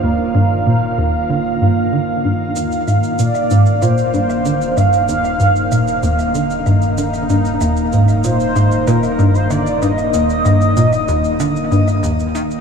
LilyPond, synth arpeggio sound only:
\new Staff \with { instrumentName = "Synth arpeggio sound" } { \clef bass \time 4/4 \key ees \major \tempo 4 = 95 ees,16 r16 g,8 bes,8 ees,16 r16 d16 r16 g,16 r16 d8 g,16 r16 | ees,16 r16 aes,16 r16 bes,8 aes,16 r16 bes,16 r16 g,16 r16 d8 g,16 r16 | ees,16 r16 g,8 bes,8 ees,16 r16 d16 r16 g,16 r16 d8 g,16 r16 | ees,16 r16 aes,16 r16 bes,8 aes,16 r16 bes,16 r16 g,16 r16 d8 g,16 r16 |
ees,16 r16 g,8 bes,8 ees,16 r16 d16 r16 g,8 ees,8 ees16 r16 | }